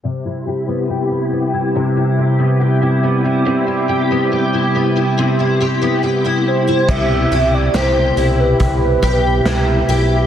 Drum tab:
CC |--------|--------|x-------|
HH |--------|--------|-xxxxxxx|
SD |--------|--------|--o---o-|
BD |--------|--------|o---oo--|